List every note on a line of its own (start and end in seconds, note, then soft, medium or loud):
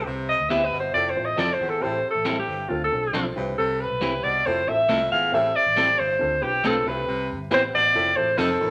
0.00 0.37 C4 medium
0.00 0.37 E4 medium
0.00 0.37 G4 medium
0.00 0.37 B4 medium
0.07 0.33 C2 loud
0.07 0.38 C3 medium
0.29 0.51 D#5 loud
0.40 0.48 D2 medium
0.49 0.68 D2 medium
0.49 0.61 B3 medium
0.49 0.77 C4 medium
0.49 0.77 E4 medium
0.49 0.61 E4 medium
0.49 0.78 G4 medium
0.49 0.61 G4 medium
0.49 0.78 B4 medium
0.49 0.61 B4 medium
0.49 0.66 E5 loud
0.65 0.79 B4 loud
0.72 0.90 G1 medium
0.72 0.90 B2 medium
0.80 0.94 C5 medium
0.93 1.17 F1 loud
0.93 1.12 A2 medium
0.93 1.07 C4 medium
0.93 1.08 E4 medium
0.93 1.08 F4 medium
0.93 1.08 A4 medium
0.93 1.11 D5 loud
1.10 1.27 C5 medium
1.15 1.39 A1 medium
1.15 1.29 C4 medium
1.15 1.30 E4 medium
1.15 1.30 F4 medium
1.15 1.30 C5 medium
1.25 1.41 D#5 loud
1.36 1.56 F1 loud
1.36 1.56 F2 medium
1.36 1.48 F3 medium
1.36 1.64 C4 medium
1.36 1.49 C4 medium
1.36 1.64 E4 medium
1.36 1.49 E4 medium
1.36 1.65 F4 medium
1.36 1.65 A4 medium
1.36 1.49 A4 medium
1.36 1.55 D5 loud
1.54 1.71 C5 medium
1.60 1.78 G#1 medium
1.60 1.78 E2 medium
1.69 1.84 A4 medium
1.80 2.00 A1 loud
1.80 2.00 A2 medium
1.80 2.08 C4 medium
1.80 2.09 E4 medium
1.80 2.09 G4 medium
1.80 2.09 A4 loud
1.80 2.10 C5 medium
2.11 2.38 A4 medium
2.15 2.41 A1 medium
2.25 2.36 G3 medium
2.25 2.53 C4 medium
2.25 2.36 C4 medium
2.25 2.36 E4 medium
2.25 2.53 E4 medium
2.25 2.53 G4 medium
2.25 2.36 A4 medium
2.25 2.54 A4 medium
2.40 2.70 G4 medium
2.48 2.66 G1 medium
2.48 2.66 G2 medium
2.69 2.88 D2 loud
2.69 2.83 C4 medium
2.69 2.83 D4 medium
2.69 2.84 F4 medium
2.69 2.84 A4 medium
2.84 3.25 A4 medium
2.92 3.10 B1 medium
2.92 3.05 C4 medium
2.92 3.06 D4 medium
2.92 3.06 F4 medium
2.92 3.06 A4 medium
3.13 3.31 B1 medium
3.13 3.24 F3 medium
3.13 3.35 C4 medium
3.13 3.24 C4 medium
3.13 3.36 D4 medium
3.13 3.24 D4 loud
3.13 3.36 F4 medium
3.13 3.25 A4 loud
3.13 3.36 A4 medium
3.36 3.54 C2 loud
3.36 3.54 G2 medium
3.36 3.89 C4 medium
3.36 3.89 E4 medium
3.36 3.89 G4 medium
3.36 3.89 B4 medium
3.58 3.84 C2 loud
3.58 3.89 C3 medium
3.58 3.83 A4 medium
3.81 4.26 B4 medium
3.91 3.99 B1 medium
4.00 4.20 C2 medium
4.00 4.12 G3 medium
4.00 4.28 C4 medium
4.00 4.12 C4 medium
4.00 4.28 E4 medium
4.00 4.12 E4 loud
4.00 4.29 G4 medium
4.00 4.29 B4 medium
4.00 4.12 B4 medium
4.24 4.41 C2 medium
4.24 4.41 B2 medium
4.24 4.48 D5 medium
4.45 4.67 F1 loud
4.45 4.63 A2 medium
4.45 4.59 C4 medium
4.45 4.60 E4 medium
4.45 4.60 F4 medium
4.45 4.60 A4 medium
4.45 4.70 C5 loud
4.67 4.85 A1 medium
4.67 4.81 C4 medium
4.67 4.81 E4 medium
4.67 4.81 F4 medium
4.67 4.82 A4 medium
4.67 5.11 E5 loud
4.88 5.06 C2 medium
4.88 5.07 F2 medium
4.88 4.99 A3 loud
4.88 5.16 C4 medium
4.88 5.00 C4 medium
4.88 5.16 E4 medium
4.88 5.00 E4 loud
4.88 5.16 F4 medium
4.88 5.16 A4 medium
4.88 5.00 A4 loud
5.11 5.28 G#1 medium
5.11 5.29 E2 medium
5.11 5.36 F5 loud
5.32 5.50 A1 loud
5.32 5.51 A2 medium
5.32 5.59 C4 loud
5.32 5.60 E4 medium
5.32 5.60 G4 medium
5.32 5.60 A4 loud
5.32 5.58 E5 loud
5.56 6.01 D5 loud
5.66 5.92 A1 loud
5.76 5.87 G3 medium
5.76 6.03 C4 medium
5.76 5.87 C4 medium
5.76 6.04 E4 medium
5.76 5.87 E4 medium
5.76 6.04 G4 medium
5.76 6.04 A4 medium
5.76 5.87 A4 loud
5.98 6.16 G1 medium
5.98 6.16 G2 medium
5.98 6.44 C5 medium
6.19 6.44 D2 loud
6.19 6.33 C4 medium
6.19 6.33 D4 medium
6.19 6.33 F4 medium
6.19 6.34 A4 medium
6.42 6.60 B1 medium
6.42 6.55 C4 medium
6.42 6.55 D4 medium
6.42 6.56 F4 medium
6.42 6.69 G4 medium
6.42 6.56 B4 medium
6.63 6.82 B1 medium
6.63 6.74 A3 medium
6.63 6.84 C4 medium
6.63 6.75 C4 medium
6.63 6.86 D4 medium
6.63 6.86 F4 medium
6.63 6.75 F4 medium
6.63 6.75 A4 loud
6.63 6.89 A4 medium
6.63 6.86 B4 medium
6.86 7.03 C2 loud
6.86 7.03 G2 medium
6.86 7.38 C4 medium
6.86 7.39 E4 medium
6.86 7.39 G4 medium
6.86 7.39 B4 medium
6.86 7.30 B4 medium
7.08 7.32 C2 loud
7.08 7.38 C3 medium
7.31 7.47 G1 medium
7.51 7.69 A1 medium
7.51 7.61 B3 medium
7.51 7.78 C4 medium
7.51 7.78 E4 medium
7.51 7.62 E4 loud
7.51 7.78 G4 medium
7.51 7.62 G4 medium
7.51 7.78 B4 medium
7.51 7.62 B4 loud
7.51 7.63 C5 loud
7.73 7.91 A1 medium
7.73 7.91 B2 medium
7.73 8.18 D5 loud
7.94 8.12 F1 loud
7.94 8.12 A2 medium
7.94 8.08 C4 medium
7.94 8.08 E4 medium
7.94 8.08 F4 medium
7.94 8.09 A4 medium
8.15 8.34 A1 medium
8.15 8.29 C4 medium
8.15 8.30 E4 medium
8.15 8.30 F4 medium
8.15 8.30 A4 medium
8.15 8.40 C5 loud
8.37 8.55 F1 loud
8.37 8.56 F2 medium
8.37 8.48 F3 medium
8.37 8.65 C4 medium
8.37 8.49 C4 medium
8.37 8.65 D#4 medium
8.37 8.49 D#4 medium
8.37 8.65 F4 medium
8.37 8.70 A4 medium
8.37 8.65 A4 medium
8.37 8.49 A4 medium
8.60 8.70 A1 medium
8.60 8.70 D#2 medium